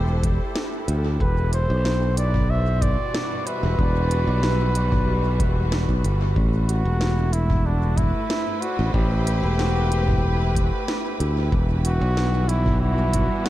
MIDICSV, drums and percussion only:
0, 0, Header, 1, 2, 480
1, 0, Start_track
1, 0, Key_signature, 1, "minor"
1, 0, Tempo, 645161
1, 896, Time_signature, 4, 2, 24, 8
1, 10037, End_track
2, 0, Start_track
2, 0, Title_t, "Drums"
2, 174, Note_on_c, 9, 36, 105
2, 175, Note_on_c, 9, 42, 50
2, 249, Note_off_c, 9, 36, 0
2, 249, Note_off_c, 9, 42, 0
2, 413, Note_on_c, 9, 38, 80
2, 487, Note_off_c, 9, 38, 0
2, 657, Note_on_c, 9, 42, 50
2, 731, Note_off_c, 9, 42, 0
2, 895, Note_on_c, 9, 36, 124
2, 970, Note_off_c, 9, 36, 0
2, 1137, Note_on_c, 9, 42, 49
2, 1211, Note_off_c, 9, 42, 0
2, 1378, Note_on_c, 9, 38, 77
2, 1452, Note_off_c, 9, 38, 0
2, 1617, Note_on_c, 9, 42, 51
2, 1691, Note_off_c, 9, 42, 0
2, 1743, Note_on_c, 9, 36, 109
2, 1744, Note_on_c, 9, 45, 68
2, 1817, Note_off_c, 9, 36, 0
2, 1818, Note_off_c, 9, 45, 0
2, 2097, Note_on_c, 9, 36, 109
2, 2099, Note_on_c, 9, 42, 50
2, 2099, Note_on_c, 9, 45, 73
2, 2171, Note_off_c, 9, 36, 0
2, 2174, Note_off_c, 9, 42, 0
2, 2174, Note_off_c, 9, 45, 0
2, 2340, Note_on_c, 9, 38, 82
2, 2414, Note_off_c, 9, 38, 0
2, 2579, Note_on_c, 9, 42, 50
2, 2654, Note_off_c, 9, 42, 0
2, 2818, Note_on_c, 9, 36, 117
2, 2892, Note_off_c, 9, 36, 0
2, 3059, Note_on_c, 9, 42, 48
2, 3133, Note_off_c, 9, 42, 0
2, 3297, Note_on_c, 9, 38, 75
2, 3371, Note_off_c, 9, 38, 0
2, 3536, Note_on_c, 9, 42, 46
2, 3610, Note_off_c, 9, 42, 0
2, 3662, Note_on_c, 9, 36, 106
2, 3663, Note_on_c, 9, 45, 69
2, 3737, Note_off_c, 9, 36, 0
2, 3738, Note_off_c, 9, 45, 0
2, 4015, Note_on_c, 9, 36, 109
2, 4017, Note_on_c, 9, 42, 48
2, 4090, Note_off_c, 9, 36, 0
2, 4092, Note_off_c, 9, 42, 0
2, 4256, Note_on_c, 9, 38, 80
2, 4331, Note_off_c, 9, 38, 0
2, 4381, Note_on_c, 9, 36, 62
2, 4456, Note_off_c, 9, 36, 0
2, 4498, Note_on_c, 9, 42, 45
2, 4572, Note_off_c, 9, 42, 0
2, 4734, Note_on_c, 9, 36, 116
2, 4808, Note_off_c, 9, 36, 0
2, 4977, Note_on_c, 9, 42, 45
2, 5052, Note_off_c, 9, 42, 0
2, 5214, Note_on_c, 9, 38, 72
2, 5288, Note_off_c, 9, 38, 0
2, 5454, Note_on_c, 9, 42, 48
2, 5529, Note_off_c, 9, 42, 0
2, 5579, Note_on_c, 9, 36, 101
2, 5580, Note_on_c, 9, 45, 70
2, 5654, Note_off_c, 9, 36, 0
2, 5655, Note_off_c, 9, 45, 0
2, 5933, Note_on_c, 9, 36, 101
2, 5934, Note_on_c, 9, 42, 47
2, 5934, Note_on_c, 9, 45, 76
2, 6008, Note_off_c, 9, 36, 0
2, 6008, Note_off_c, 9, 42, 0
2, 6008, Note_off_c, 9, 45, 0
2, 6175, Note_on_c, 9, 38, 78
2, 6249, Note_off_c, 9, 38, 0
2, 6416, Note_on_c, 9, 42, 45
2, 6490, Note_off_c, 9, 42, 0
2, 6653, Note_on_c, 9, 36, 109
2, 6727, Note_off_c, 9, 36, 0
2, 6897, Note_on_c, 9, 42, 49
2, 6972, Note_off_c, 9, 42, 0
2, 7136, Note_on_c, 9, 38, 69
2, 7211, Note_off_c, 9, 38, 0
2, 7379, Note_on_c, 9, 42, 45
2, 7453, Note_off_c, 9, 42, 0
2, 7499, Note_on_c, 9, 36, 96
2, 7507, Note_on_c, 9, 45, 75
2, 7574, Note_off_c, 9, 36, 0
2, 7581, Note_off_c, 9, 45, 0
2, 7853, Note_on_c, 9, 36, 100
2, 7860, Note_on_c, 9, 42, 48
2, 7927, Note_off_c, 9, 36, 0
2, 7934, Note_off_c, 9, 42, 0
2, 8097, Note_on_c, 9, 38, 72
2, 8171, Note_off_c, 9, 38, 0
2, 8336, Note_on_c, 9, 42, 47
2, 8410, Note_off_c, 9, 42, 0
2, 8573, Note_on_c, 9, 36, 110
2, 8648, Note_off_c, 9, 36, 0
2, 8815, Note_on_c, 9, 42, 48
2, 8889, Note_off_c, 9, 42, 0
2, 9056, Note_on_c, 9, 38, 69
2, 9130, Note_off_c, 9, 38, 0
2, 9294, Note_on_c, 9, 42, 47
2, 9368, Note_off_c, 9, 42, 0
2, 9420, Note_on_c, 9, 36, 98
2, 9420, Note_on_c, 9, 45, 76
2, 9494, Note_off_c, 9, 45, 0
2, 9495, Note_off_c, 9, 36, 0
2, 9773, Note_on_c, 9, 42, 52
2, 9773, Note_on_c, 9, 45, 77
2, 9775, Note_on_c, 9, 36, 94
2, 9847, Note_off_c, 9, 42, 0
2, 9847, Note_off_c, 9, 45, 0
2, 9849, Note_off_c, 9, 36, 0
2, 10012, Note_on_c, 9, 38, 74
2, 10037, Note_off_c, 9, 38, 0
2, 10037, End_track
0, 0, End_of_file